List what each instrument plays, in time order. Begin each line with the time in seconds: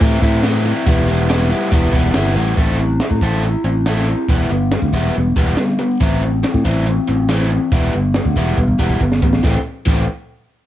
0.01 fingered electric bass A2, overdriven electric guitar E3 C4 E4, kick, closed hi-hat
0.12 closed hi-hat
0.22 fingered electric bass A2, overdriven electric guitar E3 C4 E4, kick, closed hi-hat
0.43 overdriven electric guitar E3 C4 E4, snare, closed hi-hat
0.65 overdriven electric guitar C4 E4, closed hi-hat
0.76 closed hi-hat
0.86 fingered electric bass E1, overdriven electric guitar G3 B3 E4, kick, closed hi-hat
1.08 overdriven electric guitar B3 E4, closed hi-hat
1.29 overdriven electric guitar G3 B3 E4, snare, closed hi-hat
1.40 closed hi-hat
1.50 overdriven electric guitar B3 E4, closed hi-hat
1.61 closed hi-hat
1.72 fingered electric bass E1, overdriven electric guitar G3 B3 E4, kick, closed hi-hat
1.92 fingered electric bass E1, overdriven electric guitar G3 B3 E4, kick, closed hi-hat
2.14 fingered electric bass G1, overdriven electric guitar G3 B3 E4, snare, closed hi-hat
2.35 fingered electric bass A1, overdriven electric guitar B3 E4, closed hi-hat
2.47 closed hi-hat
2.57 fingered electric bass A1, overdriven electric guitar C4 E4 A4, kick, closed hi-hat
2.69 snare
2.79 overdriven electric guitar C4 E4, closed hi-hat
3.00 overdriven electric guitar C4 E4, snare, closed hi-hat
3.11 fingered electric bass A2, kick
3.21 fingered electric bass A1, overdriven electric guitar C4 E4 A4, kick, closed hi-hat
3.42 overdriven electric guitar C4 E4, closed hi-hat
3.64 fingered electric bass A1, overdriven electric guitar C4 E4, closed hi-hat
3.86 overdriven electric guitar C4 E4 A4, snare, closed hi-hat
4.07 overdriven electric guitar C4 E4, closed hi-hat
4.29 fingered electric bass E1, overdriven electric guitar G3 B3 E4, kick, closed hi-hat
4.50 fingered electric bass G1, overdriven electric guitar G3 B3, closed hi-hat
4.72 overdriven electric guitar G3 B3, snare, closed hi-hat
4.82 fingered electric bass D2, kick
4.93 fingered electric bass E1, overdriven electric guitar G3 B3 E4, kick, closed hi-hat
5.15 fingered electric bass E1, overdriven electric guitar G3 B3, closed hi-hat
5.36 fingered electric bass E1, overdriven electric guitar G3 B3 E4, kick, closed hi-hat
5.57 overdriven electric guitar G3 B3, snare, closed hi-hat
5.79 overdriven electric guitar G3 B3, closed hi-hat
6.00 fingered electric bass A1, overdriven electric guitar E3 C4 E4, kick, closed hi-hat
6.22 overdriven electric guitar E3 C4, closed hi-hat
6.43 overdriven electric guitar E3 C4, snare, closed hi-hat
6.54 fingered electric bass A2, kick
6.65 fingered electric bass A1, overdriven electric guitar E3 C4 E4, kick, closed hi-hat
6.86 overdriven electric guitar E3 C4, closed hi-hat
7.08 fingered electric bass A1, overdriven electric guitar E3 C4, closed hi-hat
7.29 overdriven electric guitar E3 C4 E4, snare, closed hi-hat
7.50 overdriven electric guitar E3 C4, closed hi-hat
7.72 fingered electric bass E1, overdriven electric guitar G3 B3 E4, kick, closed hi-hat
7.93 fingered electric bass G1, overdriven electric guitar G3 B3, closed hi-hat
8.14 overdriven electric guitar G3 B3, snare, closed hi-hat
8.25 fingered electric bass D2, kick
8.36 fingered electric bass E1, overdriven electric guitar G3 B3 E4, kick, closed hi-hat
8.58 fingered electric bass E1, overdriven electric guitar G3 B3, kick
8.68 kick
8.79 fingered electric bass E1, overdriven electric guitar G3 B3 E4, kick
8.90 kick
9.01 fingered electric bass G1, overdriven electric guitar G3 B3, kick
9.12 snare
9.22 fingered electric bass A1, overdriven electric guitar G3 B3, kick
9.33 snare
9.43 fingered electric bass A1, overdriven electric guitar E3 A3 C4, kick, snare
9.86 fingered electric bass A1, overdriven electric guitar E3 A3 C4, kick, crash